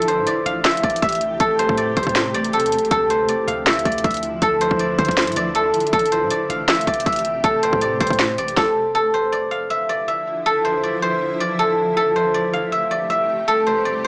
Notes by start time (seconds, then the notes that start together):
Already playing: A1 C3 A3 G4 A4 D5
0.02 closed hi-hat
0.08 C5, closed hi-hat
0.18 A2
0.27 D5, closed hi-hat
0.46 A1 F5, closed hi-hat
0.65 E5, snare, clap, closed hi-hat
0.71 closed hi-hat
0.77 closed hi-hat
0.83 A1 D5, kick, closed hi-hat
0.90 closed hi-hat
0.96 closed hi-hat
1.02 A1 E5, kick, closed hi-hat
1.09 closed hi-hat
1.12 closed hi-hat
1.15 closed hi-hat
1.21 closed hi-hat
1.40 A1 A4, kick, closed hi-hat
1.59 C5, closed hi-hat
1.69 A2, kick
1.78 D5, closed hi-hat
1.97 G1 C5, kick, closed hi-hat
2.03 A2, kick, closed hi-hat
2.09 closed hi-hat
2.16 snare, clap, closed hi-hat
2.34 A1 D5, closed hi-hat
2.44 closed hi-hat
2.53 A4, closed hi-hat
2.60 E2, closed hi-hat
2.66 closed hi-hat
2.72 closed hi-hat
2.77 A1, closed hi-hat
2.85 closed hi-hat
2.91 D2 D3 F3 E4 A4, kick, closed hi-hat
3.10 C5, closed hi-hat
3.29 D5, closed hi-hat
3.48 D2 F5, closed hi-hat
3.67 E5, snare, clap, closed hi-hat
3.73 closed hi-hat
3.79 closed hi-hat
3.85 D2 D5, kick, closed hi-hat
3.92 closed hi-hat
3.98 closed hi-hat
4.04 D2 E5, kick, closed hi-hat
4.11 closed hi-hat
4.14 closed hi-hat
4.17 closed hi-hat
4.23 closed hi-hat
4.42 D2 A4, kick, closed hi-hat
4.61 C5, closed hi-hat
4.71 D2, kick
4.79 D5, closed hi-hat
4.99 D3 C5, kick, closed hi-hat
5.05 D2, kick, closed hi-hat
5.11 closed hi-hat
5.17 snare, clap, closed hi-hat
5.22 closed hi-hat
5.27 A2, closed hi-hat
5.32 closed hi-hat
5.36 D2 D5, closed hi-hat
5.55 A4, closed hi-hat
5.74 closed hi-hat, open hi-hat
5.80 closed hi-hat
5.87 closed hi-hat
5.93 A1 C3 A3 G4 A4, kick, closed hi-hat
5.99 closed hi-hat
6.06 closed hi-hat
6.12 C5, closed hi-hat
6.22 A2
6.30 D5, closed hi-hat
6.50 A1 F5, closed hi-hat
6.68 E5, snare, clap, closed hi-hat
6.75 closed hi-hat
6.81 closed hi-hat
6.87 A1 D5, kick, closed hi-hat
6.94 closed hi-hat
7.00 closed hi-hat
7.06 A1 E5, kick, closed hi-hat
7.13 closed hi-hat
7.16 closed hi-hat
7.19 closed hi-hat
7.25 closed hi-hat
7.44 A1 A4, kick, closed hi-hat
7.63 C5, closed hi-hat
7.73 A2, kick
7.81 D5, closed hi-hat
8.01 G1 C5, kick, closed hi-hat
8.07 A2, kick, closed hi-hat
8.13 closed hi-hat
8.19 snare, clap, closed hi-hat
8.38 A1 D5, closed hi-hat
8.48 closed hi-hat
8.57 A4, kick, snare
8.95 D3 F3 E4 A4
9.14 C5
9.32 D5
9.51 F5
9.70 E5
9.89 D5
10.08 E5
10.46 A4
10.65 C5
10.83 D5
11.02 C5
11.40 D5
11.59 A4
11.97 C3 A3 G4 A4
12.16 C5
12.34 D5
12.53 F5
12.72 E5
12.91 D5
13.10 E5
13.48 A4
13.67 C5
13.85 D5